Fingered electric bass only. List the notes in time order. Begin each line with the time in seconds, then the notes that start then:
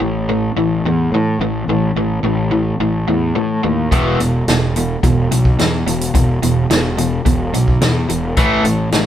0.01 A1
0.57 A1
0.84 E2
1.12 A2
1.40 A1
1.68 A1
1.96 A1
2.23 A1
2.80 A1
3.08 E2
3.36 A2
3.64 D#2
3.92 E1
4.20 E1
4.48 E1
5.03 E1
5.31 B1
5.59 E2
5.87 E1
6.15 E1
6.42 E1
6.70 E1
7.26 E1
7.53 B1
7.81 E2
8.09 E1
8.38 A1
8.64 A1
8.93 A1